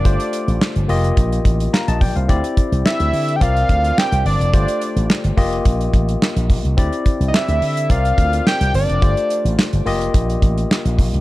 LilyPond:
<<
  \new Staff \with { instrumentName = "Analog synth lead" } { \time 4/4 \key f \mixolydian \tempo 4 = 107 d''4. r2 r8 | r4 e''8.~ e''32 g''32 f''4 g''8 d''8~ | d''4. r2 r8 | r8. r32 ees''32 e''4 f''4 g''8 d''8~ |
d''4. r2 r8 | }
  \new Staff \with { instrumentName = "Tine electric piano" } { \time 4/4 \key f \mixolydian << { r2. <f'' bes''>16 <ees'' a''>16 <d'' g''>16 <c'' f''>16~ | <c'' f''>16 r2. r8. | r1 | r1 |
r1 | } \\ { <a f' g' c''>4. <bes f' g' ees''>2~ <bes f' g' ees''>8 | <c' e' g' d''>2 <c' f' bes' d''>2 | <a f' g' c''>4. <bes f' g' ees''>2~ <bes f' g' ees''>8 | <c' e' g' d''>2 <c' f' bes' d''>2 |
<a f' g' c''>4. <bes f' g' ees''>2~ <bes f' g' ees''>8 | } >> }
  \new Staff \with { instrumentName = "Slap bass" } { \clef bass \time 4/4 \key f \mixolydian g,,16 r8 a,,16 r16 g,,16 f,,8 bes,,8 a,,8 r16 bes,,16 bes,,16 c,16 | d,16 r8 c,16 r16 d,16 d8 c,8 d,8 r16 c,16 g,,16 f,,16 | g,,16 r8 a,,16 r16 g,,16 f,,8 bes,,8 a,,8 r16 bes,,16 bes,,16 c,16 | d,16 r8 c,16 r16 d,16 d8 c,8 d,8 r16 c,16 g,,16 f,,16 |
g,,16 r8 a,,16 r16 g,,16 f,,8 bes,,8 a,,8 r16 bes,,16 bes,,16 c,16 | }
  \new DrumStaff \with { instrumentName = "Drums" } \drummode { \time 4/4 <hh bd>16 hh16 hh16 hh16 <hc sn>16 hh16 hho16 hh16 <hh bd>16 hh16 <hh bd>16 hh16 <hc sn>16 hh16 <hho bd>16 hh16 | <hh bd>16 hh16 <hh bd>16 hh16 <hc sn>16 hh16 hho16 hh16 <hh bd>16 hh16 <hh bd>16 hh16 <hc sn>16 hh16 hho16 hh16 | <hh bd>16 hh16 hh16 hh16 <hc sn>16 hh16 <hho bd>16 hh16 <hh bd>16 hh16 <hh bd>16 hh16 <hc sn>16 hh16 <hho bd>16 hh16 | <hh bd>16 hh16 <hh bd>16 hh16 <hc sn>16 hh16 hho16 hh16 <hh bd>16 hh16 <hh bd>16 hh16 <hc sn>16 hh16 hho16 hh16 |
<hh bd>16 hh16 hh16 hh16 <hc sn>16 hh16 hho16 hh16 <hh bd>16 hh16 <hh bd>16 hh16 <hc sn>16 hh16 <hho bd>16 hh16 | }
>>